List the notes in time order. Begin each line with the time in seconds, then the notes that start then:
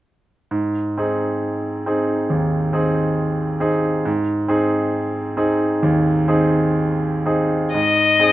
0.51 G#2
0.98 C4 D#4 G#4
1.86 C4 D#4 G#4
2.30 D#2
2.73 C4 D#4 G#4
3.60 C4 D#4 G#4
4.05 G#2
4.48 C4 D#4 G#4
5.37 C4 D#4 G#4
5.83 D#2
6.28 C4 D#4 G#4
7.26 C4 D#4 G#4
7.74 G#2 D#5
8.20 C4 D#4 G#4